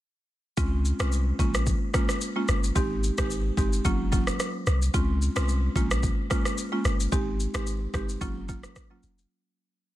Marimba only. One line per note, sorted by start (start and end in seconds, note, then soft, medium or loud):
0.57 0.96 G#3 medium
0.57 0.96 C4 medium
0.57 0.96 C#4 medium
0.57 0.96 F4 loud
1.00 1.36 G#3 medium
1.00 1.36 C4 medium
1.00 1.37 C#4 medium
1.00 1.37 F4 medium
1.39 1.65 G#3 medium
1.39 1.65 A#3 medium
1.39 1.65 C#4 medium
1.39 1.65 F4 medium
1.94 2.15 G#3 medium
1.94 2.15 A#3 medium
1.94 2.15 C#4 medium
1.94 2.15 F4 medium
2.36 2.56 G#3 medium
2.36 2.56 A#3 medium
2.36 2.56 C#4 medium
2.36 2.56 F4 medium
2.75 3.14 G#3 medium
2.75 3.14 C4 medium
2.75 3.14 D#4 medium
2.75 3.15 G4 loud
3.18 3.55 G#3 medium
3.18 3.55 C4 medium
3.18 3.55 D#4 medium
3.18 3.55 G4 medium
3.58 3.83 G#3 medium
3.58 3.83 C4 medium
3.58 3.83 D#4 medium
3.58 3.83 G4 medium
3.85 4.10 F#3 medium
3.85 4.10 A#3 medium
3.85 4.10 C#4 medium
3.85 4.10 F4 loud
4.12 4.33 F#3 medium
4.12 4.33 A#3 medium
4.12 4.33 C#4 medium
4.12 4.33 F4 medium
4.94 5.33 G#3 medium
4.94 5.33 C4 medium
4.94 5.33 C#4 medium
4.94 5.33 F4 loud
5.36 5.73 G#3 medium
5.36 5.73 C4 medium
5.36 5.73 C#4 medium
5.36 5.73 F4 medium
5.76 6.01 G#3 medium
5.76 6.01 A#3 medium
5.76 6.01 C#4 medium
5.76 6.01 F4 medium
6.30 6.51 G#3 medium
6.30 6.52 A#3 medium
6.30 6.52 C#4 medium
6.30 6.52 F4 medium
6.72 6.92 G#3 medium
6.72 6.92 A#3 medium
6.72 6.92 C#4 medium
6.72 6.92 F4 medium
7.12 7.51 G#3 medium
7.12 7.51 C4 medium
7.12 7.51 D#4 medium
7.12 7.51 G4 loud
7.54 7.91 G#3 medium
7.54 7.91 C4 medium
7.54 7.91 D#4 medium
7.54 7.91 G4 medium
7.94 8.19 G#3 medium
7.94 8.19 C4 medium
7.94 8.19 D#4 medium
7.94 8.19 G4 medium
8.21 8.46 F#3 medium
8.21 8.46 A#3 medium
8.21 8.47 C#4 medium
8.21 8.47 F4 loud
8.48 8.70 F#3 medium
8.48 8.70 A#3 medium
8.48 8.70 C#4 medium
8.48 8.70 F4 medium
8.90 9.10 F#3 medium
8.90 9.11 A#3 medium
8.90 9.11 C#4 medium
8.90 9.11 F4 medium